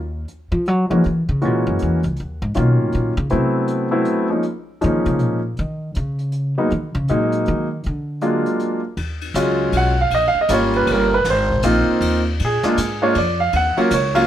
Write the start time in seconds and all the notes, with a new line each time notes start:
Already playing: D#2
0.28 closed hi-hat
0.52 F3
0.66 F#3, closed hi-hat
0.90 E3 F3 G#3 A#3 C#4 F#4
1.04 E3, closed hi-hat
1.29 C#3
1.42 A#2 E3 G#3 A#3 C#4 F#4, closed hi-hat
1.67 F#2
1.79 E2, closed hi-hat
2.03 C#2, closed hi-hat
2.16 D#2, closed hi-hat
2.42 G#2
2.54 B2 D#3 F#3 A#3 C#4 F4, closed hi-hat
2.79 A2
2.92 A#2, closed hi-hat
3.17 C#3
3.30 C3 F#3 A3 B3 C4 E4, closed hi-hat
3.68 closed hi-hat
3.91 F#3 A3 B3 C4 E4
4.05 closed hi-hat
4.30 F3 G#3 A#3 C#4 D#4
4.43 closed hi-hat
4.81 D#3 F3 G#3 A#3 C#4 D#4, closed hi-hat
5.06 C#3, closed hi-hat
5.19 A#2, closed hi-hat
5.57 D#3, closed hi-hat
5.95 C#3, closed hi-hat
6.19 closed hi-hat
6.32 closed hi-hat
6.58 F#3 G#3 A#3 B3 D#4
6.70 D#3, closed hi-hat
6.95 C#3
7.08 A#2 F#3 G#3 A#3 D#4, closed hi-hat
7.32 closed hi-hat
7.46 D#3, closed hi-hat
7.84 D3, closed hi-hat
8.21 F#3 G#3 A#3 D4 F4, closed hi-hat
8.46 closed hi-hat
8.60 closed hi-hat
8.97 D#2, ride
9.21 ride
9.34 C#2 F#3 G#3 C#4 F4, hi-hat pedal, ride
9.72 B1, ride
9.77 F#5
10.01 F5
10.10 A#1, ride
10.15 D#5
10.28 F5
10.35 muted upright bass stroke
10.41 D#5
10.49 G#1 G3 A#3 C#4 F4, hi-hat pedal, ride
10.54 C#5
10.73 B4, ride
10.87 G1, ride
10.92 A#4
11.14 B4
11.24 G#1, snare, ride
11.30 C5
11.49 kick
11.62 A#1 A#3 C4 D#4 F4, hi-hat pedal, ride
11.88 muted upright bass stroke
12.01 D#2, ride
12.40 A#2, ride
12.45 G#4
12.63 G#3 A#3 D4 F4, muted upright bass stroke, snare
12.77 G#2, hi-hat pedal, ride
13.02 G#3 A#3 D4 F4 C#5
13.15 F2 D5, ride
13.40 F5
13.53 D#2 F#5, ride
13.77 F#3 A#3 C#4 F4 A#4, muted upright bass stroke, ride
13.91 C#2 C#5, hi-hat pedal, ride
14.15 F#3 A#3 C#4 F4 F5, ride